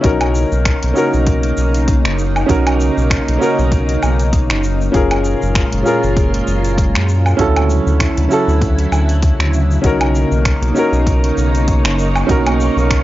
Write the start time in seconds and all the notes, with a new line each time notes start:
0.01 B1 C#3 A#3 C#4 D#4 F#4, kick, closed hi-hat, shaker
0.06 A#4
0.21 closed hi-hat, low woodblock
0.35 shaker
0.52 B1, shaker
0.66 finger snap, kick, closed hi-hat, shaker
0.83 B1, closed hi-hat
0.94 C#4 D#4 F#4, shaker
0.98 A#4
1.14 B1, shaker
1.27 kick, closed hi-hat, shaker
1.43 closed hi-hat
1.57 B1, shaker
1.74 closed hi-hat, shaker
1.88 kick, closed hi-hat, shaker
2.05 F#1, finger snap, closed hi-hat
2.19 shaker
2.36 low woodblock, shaker
2.46 B1 C#4 D#4 F#4, kick, closed hi-hat, shaker
2.51 A#4
2.67 closed hi-hat, low woodblock
2.81 shaker
2.97 B1, shaker
3.10 finger snap, kick, closed hi-hat, shaker
3.28 B1, closed hi-hat
3.39 C#4 D#4 F#4, shaker
3.43 A#4
3.59 B1, shaker
3.72 kick, closed hi-hat, shaker
3.89 closed hi-hat
4.03 B1, low woodblock, shaker
4.19 closed hi-hat, shaker
4.33 kick, closed hi-hat, shaker
4.50 F#1, finger snap, closed hi-hat
4.64 shaker
4.81 shaker
4.92 F#1 A#2 G#3 C#4 F4 G#4, kick, closed hi-hat, shaker
4.96 A#4
5.11 closed hi-hat, low woodblock
5.25 shaker
5.42 F#1, shaker
5.55 finger snap, kick, closed hi-hat, shaker
5.73 F#1, closed hi-hat
5.83 C#4 F4 G#4, shaker
5.88 A#4
6.04 F#1, shaker
6.17 kick, closed hi-hat, shaker
6.34 closed hi-hat
6.47 F#1, shaker
6.65 closed hi-hat, shaker
6.78 kick, closed hi-hat, shaker
6.95 F#2, finger snap, closed hi-hat
7.09 shaker
7.26 low woodblock, shaker
7.37 D2 C#3 F#3 C#4 E4 F#4, kick, closed hi-hat, shaker
7.41 A4
7.56 closed hi-hat, low woodblock
7.70 shaker
7.87 D2, shaker
8.00 finger snap, kick, closed hi-hat, shaker
8.17 D2, closed hi-hat
8.29 C#4 E4 F#4, shaker
8.33 A4
8.48 D2, shaker
8.61 kick, closed hi-hat, shaker
8.78 closed hi-hat
8.92 D2, low woodblock, shaker
9.09 closed hi-hat, shaker
9.22 kick, closed hi-hat, shaker
9.39 D2, finger snap, closed hi-hat
9.54 shaker
9.71 shaker
9.82 B1 A#3 C#4 D#4 F#4 C#5 C#6, kick, closed hi-hat, shaker
9.86 A#4
10.01 closed hi-hat, low woodblock
10.15 shaker
10.31 B1, shaker
10.45 finger snap, kick, closed hi-hat, shaker
10.62 B1, closed hi-hat
10.75 C#4 D#4 F#4, shaker
10.79 A#4
10.92 B1, shaker
11.07 kick, closed hi-hat, shaker
11.24 closed hi-hat
11.38 B1, shaker
11.55 closed hi-hat, shaker
11.68 kick, closed hi-hat, shaker
11.85 F#1, finger snap, closed hi-hat
11.99 shaker
12.16 low woodblock, shaker
12.27 B1 C#4 D#4 F#4, kick, closed hi-hat, shaker
12.31 A#4
12.47 closed hi-hat, low woodblock
12.61 shaker
12.77 B1, shaker
12.91 finger snap, kick, closed hi-hat, shaker